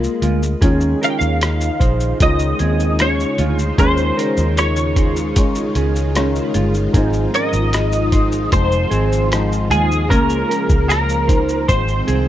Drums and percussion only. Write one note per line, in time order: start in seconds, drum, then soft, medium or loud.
0.04 shaker medium
0.22 closed hi-hat medium
0.22 shaker soft
0.43 shaker medium
0.62 kick loud
0.62 closed hi-hat medium
0.62 shaker medium
0.81 shaker soft
1.03 closed hi-hat medium
1.03 shaker soft
1.21 shaker medium
1.41 cross-stick loud
1.41 closed hi-hat medium
1.41 shaker medium
1.61 shaker medium
1.80 kick medium
1.80 closed hi-hat medium
1.80 shaker medium
2.00 shaker medium
2.20 kick loud
2.20 closed hi-hat medium
2.20 shaker medium
2.39 shaker medium
2.59 closed hi-hat soft
2.59 shaker soft
2.80 shaker medium
2.99 cross-stick medium
2.99 closed hi-hat medium
2.99 shaker medium
3.20 shaker soft
3.38 closed hi-hat medium
3.38 shaker soft
3.59 shaker medium
3.78 kick loud
3.78 closed hi-hat medium
3.78 shaker medium
3.97 shaker soft
4.19 closed hi-hat medium
4.19 shaker medium
4.37 shaker medium
4.57 cross-stick medium
4.57 closed hi-hat medium
4.57 shaker medium
4.76 shaker medium
4.96 kick medium
4.96 closed hi-hat soft
4.96 shaker medium
5.16 shaker medium
5.36 kick loud
5.36 closed hi-hat medium
5.36 shaker medium
5.55 shaker medium
5.75 closed hi-hat medium
5.75 shaker soft
5.96 shaker medium
6.15 cross-stick medium
6.15 closed hi-hat medium
6.15 shaker medium
6.35 shaker soft
6.54 closed hi-hat medium
6.54 shaker medium
6.74 shaker soft
6.94 kick loud
6.94 closed hi-hat medium
6.94 shaker medium
7.13 shaker soft
7.34 closed hi-hat medium
7.34 shaker soft
7.53 shaker medium
7.73 cross-stick medium
7.73 closed hi-hat medium
7.73 shaker medium
7.92 shaker medium
8.12 kick medium
8.12 closed hi-hat medium
8.12 shaker medium
8.32 shaker medium
8.52 kick medium
8.52 closed hi-hat medium
8.52 shaker medium
8.72 shaker soft
8.91 closed hi-hat soft
8.91 shaker soft
9.12 shaker medium
9.32 cross-stick medium
9.32 closed hi-hat medium
9.32 shaker medium
9.52 shaker medium
9.71 closed hi-hat medium
9.71 shaker medium
9.92 shaker soft
10.11 kick loud
10.11 closed hi-hat medium
10.11 shaker medium
10.30 shaker medium
10.51 closed hi-hat medium
10.51 shaker medium
10.69 kick medium
10.69 shaker medium
10.90 cross-stick loud
10.90 closed hi-hat medium
10.90 shaker medium
11.09 shaker medium
11.29 kick medium
11.29 closed hi-hat medium
11.29 shaker medium
11.49 shaker medium
11.69 kick loud
11.69 closed hi-hat medium
11.69 shaker medium
11.88 shaker soft
12.08 closed hi-hat soft
12.08 shaker soft